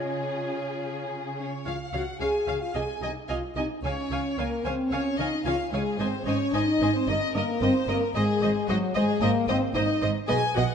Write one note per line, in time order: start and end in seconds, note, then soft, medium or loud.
0.00 1.42 C#3 soft
0.00 1.22 C#4 soft
0.00 1.43 C#4 soft
0.00 1.22 F4 soft
0.00 1.43 F4 soft
0.00 1.34 G#4 soft
0.00 1.43 G#4 soft
0.00 1.11 C#5 soft
1.38 1.52 C#4 medium
1.38 1.64 C#5 soft
1.65 1.73 C#2 soft
1.65 1.74 C#3 soft
1.65 1.78 F4 medium
1.65 1.73 C#5 soft
1.65 1.73 F5 soft
1.65 1.93 F5 medium
1.65 1.75 F5 soft
1.93 2.01 C#2 soft
1.93 2.02 C#3 soft
1.93 2.06 F#4 medium
1.93 2.02 C#5 soft
1.93 2.01 F5 soft
1.93 2.20 F#5 medium
2.20 2.28 C#2 soft
2.20 2.29 C#3 soft
2.20 2.60 G#4 medium
2.20 2.29 C#5 soft
2.20 2.29 F5 soft
2.20 2.60 G#5 medium
2.46 2.54 C#2 soft
2.46 2.56 C#3 soft
2.46 2.55 C#5 soft
2.46 2.55 F5 soft
2.46 2.56 F5 soft
2.60 2.75 F4 medium
2.60 2.74 F5 medium
2.74 2.82 C2 soft
2.74 2.83 C3 soft
2.74 2.88 G#4 medium
2.74 2.83 D#5 soft
2.74 2.83 G#5 soft
2.74 3.02 G#5 medium
3.01 3.09 C2 soft
3.01 3.10 C3 soft
3.01 3.14 D#4 medium
3.01 3.10 D#5 medium
3.01 3.11 D#5 soft
3.01 3.10 G#5 soft
3.28 3.37 C2 soft
3.28 3.38 C3 soft
3.28 3.41 F4 medium
3.28 3.37 D#5 soft
3.28 3.36 F5 medium
3.28 3.37 G#5 soft
3.55 3.64 C2 soft
3.55 3.65 C3 medium
3.55 3.68 D#4 medium
3.55 3.63 D#5 soft
3.55 3.65 D#5 soft
3.55 3.65 G#5 soft
3.82 3.90 C#2 medium
3.82 3.92 C#3 soft
3.82 4.36 C#4 medium
3.82 4.36 C#5 medium
3.82 3.93 C#5 soft
3.82 3.93 F5 soft
3.82 3.92 G#5 soft
4.10 4.18 C#2 soft
4.10 4.19 C#3 soft
4.10 4.20 C#5 soft
4.10 4.19 F5 soft
4.10 4.19 G#5 soft
4.37 4.45 C#2 soft
4.37 4.47 C#3 soft
4.37 4.65 A#3 medium
4.37 4.64 A#4 medium
4.37 4.46 C#5 soft
4.37 4.46 F5 soft
4.37 4.46 G#5 soft
4.64 4.72 C#2 soft
4.64 4.74 C#3 soft
4.64 4.91 C4 medium
4.64 4.72 C5 soft
4.64 4.74 C#5 soft
4.64 4.73 F5 soft
4.64 4.73 G#5 soft
4.91 4.99 C#2 soft
4.91 5.00 C#3 soft
4.91 5.19 C#4 medium
4.91 5.18 C#5 medium
4.91 5.01 C#5 soft
4.91 5.00 F5 soft
4.91 4.99 G#5 soft
5.17 5.26 C#2 soft
5.17 5.27 C#3 medium
5.17 5.46 D#4 medium
5.17 5.27 C#5 soft
5.17 5.44 D#5 medium
5.17 5.27 F5 soft
5.17 5.27 G#5 soft
5.44 5.53 C#2 medium
5.44 5.54 C#3 medium
5.44 5.58 F4 medium
5.44 5.54 C#5 soft
5.44 5.71 F5 medium
5.44 5.54 F5 soft
5.44 5.53 G#5 soft
5.72 5.80 C#2 medium
5.72 5.81 C#3 medium
5.72 5.99 G#3 medium
5.72 5.99 G#4 medium
5.72 5.81 C#5 soft
5.72 5.81 F5 soft
5.72 5.81 G#5 soft
5.98 6.06 G#1 medium
5.98 6.07 G#2 medium
5.98 6.26 C4 medium
5.98 6.26 C5 medium
5.98 6.07 C5 soft
5.98 6.08 D#5 medium
5.98 6.08 G#5 soft
6.26 6.34 G#1 medium
6.26 6.34 G#2 medium
6.26 6.53 C#4 medium
6.26 6.34 C5 soft
6.26 6.52 C#5 medium
6.26 6.35 D#5 soft
6.26 6.35 G#5 soft
6.52 6.60 G#1 medium
6.52 6.62 G#2 medium
6.52 6.94 D#4 medium
6.52 6.62 C5 soft
6.52 6.62 D#5 medium
6.52 6.94 D#5 medium
6.52 6.62 G#5 medium
6.80 6.88 G#1 medium
6.80 6.89 G#2 medium
6.80 6.90 C5 medium
6.80 6.90 D#5 medium
6.80 6.90 G#5 soft
6.94 7.08 C4 medium
6.94 7.07 C5 medium
7.07 7.15 G1 medium
7.07 7.16 G2 medium
7.07 7.35 D#4 medium
7.07 7.17 A#4 medium
7.07 7.35 D#5 medium
7.07 7.17 D#5 medium
7.34 7.42 G1 medium
7.34 7.43 G2 medium
7.34 7.62 A#3 medium
7.34 7.61 A#4 medium
7.34 7.43 A#4 medium
7.34 7.43 D#5 medium
7.34 7.45 D#5 medium
7.61 7.69 G1 medium
7.61 7.69 G2 medium
7.61 7.74 C4 medium
7.61 7.69 A#4 soft
7.61 7.88 C5 medium
7.61 7.70 D#5 medium
7.61 7.71 D#5 medium
7.87 7.95 G1 medium
7.87 7.97 G2 medium
7.87 8.02 A#3 medium
7.87 7.96 A#4 medium
7.87 8.15 A#4 medium
7.87 7.96 D#5 soft
7.87 7.96 D#5 medium
8.14 8.22 G#1 medium
8.14 8.24 G#2 medium
8.14 8.68 G#3 medium
8.14 8.67 G#4 medium
8.14 8.23 C5 medium
8.14 8.23 D#5 medium
8.41 8.49 G#1 medium
8.41 8.51 G#2 medium
8.41 8.50 C5 medium
8.41 8.49 D#5 soft
8.41 8.50 D#5 medium
8.68 8.76 G#1 medium
8.68 8.77 G#2 medium
8.68 8.95 F#3 medium
8.68 8.76 F#4 medium
8.68 8.77 C5 medium
8.68 8.76 D#5 medium
8.68 8.77 D#5 medium
8.94 9.03 G#1 medium
8.94 9.04 G#2 medium
8.94 9.22 G#3 medium
8.94 9.21 G#4 medium
8.94 9.03 C5 medium
8.94 9.02 D#5 medium
8.94 9.03 D#5 medium
9.21 9.29 G#1 medium
9.21 9.31 G#2 medium
9.21 9.48 A#3 loud
9.21 9.31 A#4 medium
9.21 9.29 C5 medium
9.21 9.30 D#5 medium
9.48 9.56 G#1 medium
9.48 9.57 G#2 medium
9.48 9.61 C4 medium
9.48 9.56 C5 medium
9.48 9.57 C5 medium
9.48 9.56 D#5 medium
9.74 9.83 G#1 medium
9.74 9.84 G#2 medium
9.74 10.01 D#4 medium
9.74 9.83 C5 medium
9.74 9.82 D#5 medium
9.74 9.83 D#5 medium
9.74 10.02 D#5 medium
10.02 10.10 G#1 medium
10.02 10.11 G#2 medium
10.02 10.10 C5 medium
10.02 10.10 D#5 medium
10.28 10.37 B1 medium
10.28 10.37 B2 medium
10.28 10.41 G#4 medium
10.28 10.36 B4 medium
10.28 10.36 D#5 medium
10.28 10.53 G#5 medium
10.55 10.63 B1 medium
10.55 10.64 B2 medium
10.55 10.67 F#4 medium
10.55 10.63 B4 medium
10.55 10.63 D#5 medium
10.55 10.64 D#5 medium
10.55 10.75 F#5 medium